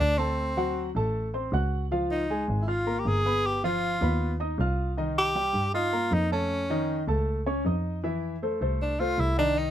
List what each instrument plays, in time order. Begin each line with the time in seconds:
Already playing: grand piano D4 D5 D6
0.00 double bass D2, tenor saxophone D4
0.18 grand piano A3 A4 A5, tenor saxophone C4
0.57 grand piano F#3 F#4 F#5
0.95 double bass A1, grand piano A3 A4 A5
1.34 grand piano C4 C5 C6
1.52 double bass C#2, grand piano F#4 F#5 F#6
1.91 grand piano F3 F4 F5
2.11 tenor saxophone D#4
2.30 grand piano G#3 G#4 G#5
2.49 double bass G#1
2.61 tenor saxophone E4
2.68 grand piano F4 F5 F6, tenor saxophone F4
2.86 grand piano A#3 A#4 A#5
2.99 tenor saxophone G4
3.06 double bass G1, tenor saxophone G#4
3.26 grand piano B3 B4 B5
3.46 tenor saxophone G4
3.64 grand piano F3 F4 F5, tenor saxophone F4
4.01 double bass D#2, grand piano B3 B4 B5
4.40 grand piano D#4 D#5 D#6
4.58 double bass C2, grand piano F4 F5 F6
4.97 grand piano D#3 D#4 D#5
5.18 tenor saxophone G4
5.35 grand piano G3 G4 G5
5.54 double bass G2
5.74 grand piano D#4 D#5 D#6, tenor saxophone F4
5.93 grand piano A#3 A#4 A#5
6.12 double bass F2, tenor saxophone D#4
6.31 grand piano A3 A4 A5, tenor saxophone C#4
6.70 grand piano D#3 D#4 D#5
7.08 double bass C#2, grand piano A3 A4 A5
7.46 grand piano C#4 C#5 C#6
7.65 double bass F2, grand piano D#4 D#5 D#6
8.04 grand piano E3 E4 E5
8.42 grand piano A3 A4 C5
8.61 double bass C2, grand piano A3 A4 C5
8.82 tenor saxophone D4
9.00 grand piano A3 A4 C5, tenor saxophone F4
9.18 double bass C2, tenor saxophone E4
9.38 grand piano D#3 D#4 D#5, tenor saxophone D4
9.58 tenor saxophone D#4